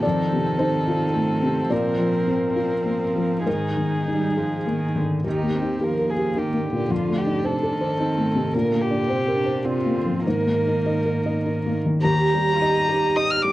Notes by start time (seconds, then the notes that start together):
0.03 F2 D#3 C4 A4 D5
0.33 C3
0.59 D#4 C5
0.88 F4
1.14 A3
1.43 C3
1.70 A#2 F3 A#4 D5
1.99 F3
2.27 C4
2.56 F4
2.85 A#3
3.16 F3
3.46 G#2 D#3 D#4 G#4 A#4
3.77 D#3
4.07 G3 D#4
4.37 F3 G#4
4.66 D#3 A#3
4.96 D3 D#3
5.25 D#2 D#3 D#4 G4
5.43 A#3
5.55 C4
5.62 D#4
5.81 F3 A#3 G4 A#4
5.99 A#4
6.10 G#4
6.18 G4
6.37 D#3 D#4 G4
6.53 A#3
6.64 D3
6.72 A#2
6.89 F2 D4 F4
7.09 A3
7.18 G4
7.26 D#4
7.44 C3 A4 C5
7.63 A4
7.72 D#3
7.81 C5
7.99 C4 D#4
8.17 A3
8.35 C3
8.53 A#2 D3 A#3 A#4
8.72 A#3
8.81 G4
8.91 D4
9.07 C3 C4 C5
9.28 A#4
9.36 D4
9.46 C5
9.64 C3 C4 D4 F4
9.86 A#3
9.95 D3
10.05 F3
10.24 G#2 D#3 A#3 A#4
10.46 A#3
10.67 D#4
10.86 D#5
11.06 A#4
11.26 D#5
11.45 D#4
11.66 A#3
11.86 D#3
12.02 D#2 G4 A#5
12.34 G3
12.59 D#4 D#5
12.89 G4
13.16 D#5 D#6
13.30 F6
13.42 G3 D6